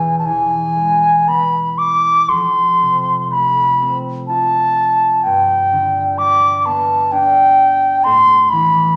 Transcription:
Already playing: harp E2 B2 B3 D4, flute G#5
0.19 flute A5
0.26 harp E3, flute G#5
0.77 harp G#3
1.27 harp B3, flute B5
1.78 flute D6
2.29 harp F2, flute C6
2.81 harp C3
3.31 harp A3, flute B5
3.81 harp C4
4.27 harp F4, flute A5
5.23 harp G2, flute G5
5.72 harp D3
6.18 harp G3, flute D6
6.65 harp B3, flute A5
7.12 harp D4, flute G5
8.04 harp A2, flute C6
8.50 harp E3, flute B5

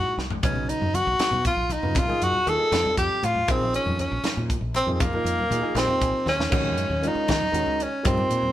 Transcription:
Already playing: grand piano A#2 G#3 D#4 E4, tenor saxophone F#4
0.17 fretless electric bass C2, snare
0.30 floor tom
0.43 fretless electric bass B1, grand piano C#3 F#3 B3 D#4, tenor saxophone C#4, kick, closed hi-hat, muted conga, low conga
0.56 high conga, low conga
0.69 tenor saxophone D#4, closed hi-hat
0.81 fretless electric bass F#2, low conga
0.94 tenor saxophone F#4, closed hi-hat, high conga, low conga
1.07 fretless electric bass B1, low conga
1.19 snare, closed hi-hat, muted conga
1.31 fretless electric bass B2, high conga, low conga
1.45 tenor saxophone F4, kick, closed hi-hat
1.56 fretless electric bass B1, low conga
1.70 tenor saxophone D#4, closed hi-hat, high conga
1.83 fretless electric bass F#2, grand piano C#3 F#3 B3 F4, low conga
1.95 fretless electric bass C2, tenor saxophone F4, kick, closed hi-hat, muted conga, low conga
2.08 grand piano F3 A#3 D#4 G#4, high conga, low conga
2.22 fretless electric bass F#2, tenor saxophone F#4, closed hi-hat
2.33 low conga
2.46 fretless electric bass D#2, grand piano F3 A#3 D#4 G#4, tenor saxophone A4, closed hi-hat, high conga, low conga
2.58 grand piano F3 A#3 D#4 G#4, low conga
2.72 fretless electric bass F2, grand piano G3 C4 F4, snare, closed hi-hat, muted conga
2.86 high conga, low conga
2.97 fretless electric bass F2, tenor saxophone G4, kick, closed hi-hat
3.12 low conga
3.23 fretless electric bass A2, tenor saxophone F4, closed hi-hat, high conga
3.35 low conga
3.48 fretless electric bass A#1, grand piano F3 A#3 D#4 G#4, tenor saxophone C4, kick, closed hi-hat, muted conga, low conga
3.62 high conga, low conga
3.74 tenor saxophone C#4, closed hi-hat
3.86 fretless electric bass F2, low conga
3.99 tenor saxophone C#4, closed hi-hat, high conga, low conga
4.11 fretless electric bass A#1, low conga
4.24 snare, closed hi-hat, muted conga
4.37 fretless electric bass A#2, high conga, low conga
4.50 kick, closed hi-hat
4.61 fretless electric bass A#1, low conga
4.74 tenor saxophone C4, closed hi-hat, high conga
4.86 fretless electric bass F2, grand piano F3 A#3 D#4 G#4, low conga
4.92 tenor saxophone C4
5.00 tenor saxophone A#3, kick, closed hi-hat, muted conga, low conga
5.13 grand piano F3 A#3 D#4 A#4, high conga
5.25 fretless electric bass F2, closed hi-hat
5.39 low conga
5.50 fretless electric bass A#2, grand piano F3 A#3 D#4 G#4, closed hi-hat, high conga
5.61 grand piano F3 A#3 D#4 G#4, low conga
5.74 fretless electric bass A#1, grand piano F3 A#3 D#4 G4, tenor saxophone C4, snare, closed hi-hat, muted conga, low conga
5.89 high conga, low conga
6.01 fretless electric bass A#1, grand piano G#5, kick, closed hi-hat
6.26 fretless electric bass D#2, tenor saxophone C#4, grand piano F5, snare, high conga
6.39 snare, low conga
6.50 fretless electric bass D#2, grand piano D#3 G#3 C#4 F#4, kick, crash, muted conga
6.65 high conga, low conga
6.77 fretless electric bass F#2, closed hi-hat
6.90 fretless electric bass D#2, low conga
7.02 grand piano D#3 G#3 C#4 F4, closed hi-hat
7.07 tenor saxophone D#4
7.15 muted fretless electric bass stroke, high conga
7.28 fretless electric bass D#3, kick, snare, closed hi-hat, muted conga, low conga
7.41 low conga
7.52 fretless electric bass D#2, grand piano D#3 G#3 C#4 F#4, closed hi-hat, low conga
7.66 fretless electric bass C#2, high conga
7.80 tenor saxophone C#4, closed hi-hat
8.03 fretless electric bass G2, grand piano F3 A#3 D#4 G4, kick, closed hi-hat, muted conga
8.07 tenor saxophone C4
8.17 high conga, low conga
8.30 fretless electric bass A#2, closed hi-hat, low conga
8.43 low conga

